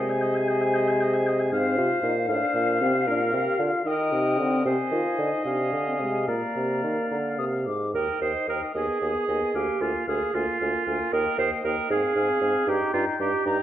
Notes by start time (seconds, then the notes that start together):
Already playing: C3 G#3 C5 D#5 G#5
0.10 G#5
0.22 D#5
0.35 G#5
0.49 D#5
0.62 G#5
0.75 D#5
0.89 G#5
1.01 D#5
1.14 G#5
1.28 D#5
1.40 G#5
1.52 G#2 C4 C5 F5
1.78 C3 F4
2.03 A#2 D#4
2.28 A2 D4 C5 F5
2.55 A#2
2.81 C3 C4
3.07 A#2 D4 A#4
3.33 C3 G4
3.59 D3 F4
3.86 D#3 D#4 A#4 D#5 G5
4.12 C3
4.39 D3 C4
4.65 C3 C4 C5 D#5 G#5
4.91 D#3 F4
5.18 D3 D#4
5.45 C3 D4 F5 G#5
5.73 D3
5.88 C4
6.00 C3 G#3
6.28 A#2 A#3 D5 F5 A#5
6.56 C3
6.84 D#3
7.11 D3 A#5
7.39 C3 D#6
7.67 G#2 D6
7.94 D#2 D#4 A#4 D#5 G5
8.21 D#2 D#4 C5 D#5 G5
8.48 D#2 D#4 A#4 D#5 G5
8.75 D#2 B3 G#4 D#5 G#5
9.01 D#2 B3 D#5 G#5
9.28 D#2 B3 D#5 G#5
9.54 D2 A#3 G4 F5 G#5
9.81 D2 A#3 F4 F5 G#5
10.08 D2 A#3 G#4 F5 G#5
10.33 D2 A#3 F4 F5 G#5
10.60 D2 A#3 F5 G#5
10.87 D2 A#3 F5 G#5
11.12 D#2 A#3 A#4 D#5 G5
11.38 D#2 A#3 C5 D#5 G5
11.64 D#2 A#3 A#4 D#5 G5
11.90 G#2 C4 G#4 F5 G#5
12.16 G#2 C4 F5 G#5
12.42 G#2 C4 F5 G#5
12.67 G2 D#4 G4 G5 A#5
12.93 G2 D#4 F4 G5 A#5
13.19 G2 D#4 G4 G5 A#5
13.45 G2 D#4 G5 A#5